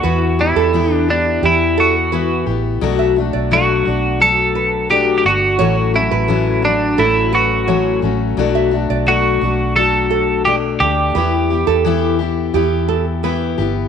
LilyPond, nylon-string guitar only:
\new Staff \with { instrumentName = "Nylon-string guitar" } { \time 4/4 \key b \minor \tempo 4 = 86 b'16 r8 a'8. r8 g'8 a'16 r16 b'8. r16 | r16 e''16 r16 d''8. r4 b'16 r4 r16 | cis''16 r8 b'8. r8 a'8 b'16 r16 cis''8. r16 | r16 e''16 r16 d''8. r4 a'16 r4 r16 |
b'16 r8 a'8. r8 g'8 a'16 r16 b'8. r16 | }